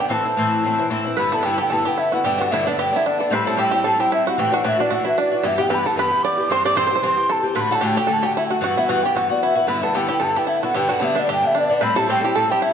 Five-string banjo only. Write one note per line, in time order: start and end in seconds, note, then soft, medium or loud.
0.00 0.12 G4 medium
0.11 0.87 A4 medium
1.17 1.32 B4 medium
1.32 1.43 A4 medium
1.43 1.57 G4 medium
1.58 1.69 G4 medium
1.70 1.86 A4 medium
1.85 1.96 G4 medium
1.98 2.12 E4 medium
2.12 2.23 F#4 medium
2.25 2.35 G4 medium
2.38 2.51 F#4 medium
2.38 2.40 G4 medium
2.54 2.66 E4 medium
2.67 2.77 D4 medium
2.79 2.92 G4 medium
2.96 3.05 E4 medium
3.06 3.20 D4 medium
3.20 3.31 A4 medium
3.33 3.47 B4 medium
3.47 3.58 A4 medium
3.59 3.70 G4 medium
3.71 3.83 G4 medium
3.84 3.98 A4 medium
4.00 4.10 G4 medium
4.12 4.27 E4 medium
4.27 4.37 F#4 medium
4.39 4.52 G4 medium
4.54 4.64 F#4 medium
4.65 4.78 E4 medium
4.80 4.90 D4 medium
4.91 5.04 F#4 medium
5.05 5.16 E4 medium
5.18 5.42 D4 medium
5.43 5.57 E4 medium
5.58 5.69 G4 medium
5.70 5.84 B4 loud
5.86 5.96 A4 medium
5.99 6.23 B4 medium
6.25 6.49 D5 medium
6.52 6.65 C5 loud
6.66 6.76 D5 loud
6.77 6.85 C5 medium
6.87 6.94 C5 medium
6.95 7.02 C5 medium
7.04 7.28 C5 medium
7.30 7.43 A4 medium
7.56 7.71 B4 medium
7.72 7.84 A4 medium
7.81 7.96 G4 medium
7.97 8.08 G4 medium
8.07 8.22 A4 medium
8.23 8.36 G4 medium
8.37 8.50 E4 medium
8.51 8.62 F#4 medium
8.64 8.77 F#4 medium
8.77 8.90 E4 medium
8.89 9.03 F#4 medium
9.06 9.17 G4 medium
9.16 9.41 F#4 medium
9.43 9.67 E4 medium
9.68 9.82 B4 medium
9.83 9.94 A4 medium
9.95 10.07 G4 medium
10.08 10.20 G4 medium
10.20 10.35 A4 medium
10.36 10.48 G4 medium
10.47 10.61 E4 medium
10.63 10.74 F#4 medium
10.74 10.89 G4 medium
10.89 11.00 F#4 medium
11.00 11.15 E4 medium
11.15 11.27 D4 medium
11.29 11.56 G4 medium
11.55 11.80 D4 medium
11.81 11.96 B4 medium
11.96 12.07 A4 loud
12.10 12.20 G4 medium
12.21 12.35 G4 medium
12.21 12.24 A4 medium
12.36 12.49 A4 medium
12.52 12.62 G4 medium
12.62 12.73 E4 medium